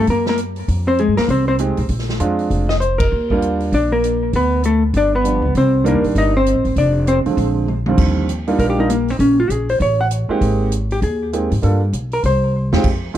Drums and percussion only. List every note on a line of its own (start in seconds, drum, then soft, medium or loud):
0.07 kick soft
0.07 open hi-hat soft
0.26 snare soft
0.38 closed hi-hat soft
0.56 open hi-hat soft
0.68 kick soft
0.68 open hi-hat soft
0.99 closed hi-hat soft
1.17 snare soft
1.17 open hi-hat soft
1.28 kick soft
1.28 open hi-hat soft
1.59 closed hi-hat soft
1.77 open hi-hat soft
1.89 kick soft
1.89 open hi-hat soft
1.99 snare soft
2.09 snare soft
2.20 closed hi-hat soft
2.39 open hi-hat soft
2.50 kick soft
2.50 open hi-hat soft
2.69 snare soft
2.81 closed hi-hat soft
3.00 kick medium
3.00 ride medium
3.30 kick soft
3.42 closed hi-hat soft
3.60 open hi-hat soft
3.72 kick soft
3.72 open hi-hat soft
4.04 closed hi-hat soft
4.33 kick soft
4.33 open hi-hat soft
4.63 closed hi-hat soft
4.94 kick soft
4.94 open hi-hat soft
5.25 closed hi-hat soft
5.55 kick soft
5.55 open hi-hat soft
5.86 closed hi-hat soft
6.04 open hi-hat soft
6.15 kick soft
6.15 open hi-hat soft
6.46 closed hi-hat soft
6.65 open hi-hat soft
6.76 kick soft
6.76 open hi-hat soft
7.07 closed hi-hat soft
7.26 open hi-hat soft
7.37 kick soft
7.37 open hi-hat soft
7.68 mid tom soft
7.86 mid tom medium
7.98 kick medium
7.98 crash medium
8.29 closed hi-hat medium
8.47 open hi-hat soft
8.59 kick soft
8.59 open hi-hat soft
8.90 closed hi-hat soft
9.08 open hi-hat soft
9.19 kick soft
9.19 open hi-hat soft
9.50 closed hi-hat medium
9.69 open hi-hat soft
9.80 kick soft
9.80 open hi-hat soft
10.11 closed hi-hat medium
10.41 kick soft
10.41 open hi-hat soft
10.72 closed hi-hat medium
10.91 open hi-hat soft
11.02 kick soft
11.02 open hi-hat soft
11.33 closed hi-hat soft
11.51 open hi-hat soft
11.63 kick soft
11.63 open hi-hat soft
11.93 closed hi-hat medium
12.12 open hi-hat soft
12.24 kick soft
12.24 open hi-hat soft
12.72 snare medium
12.84 kick medium
12.84 crash medium